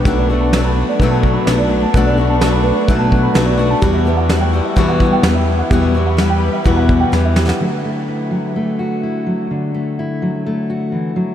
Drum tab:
SD |----o-------o---|----o-------o---|----o-------o---|----o-------o-oo|
BD |o-------o-o-----|o-------o-o-----|o-------o-o-----|o-------o-o-----|

SD |----------------|----------------|
BD |----------------|----------------|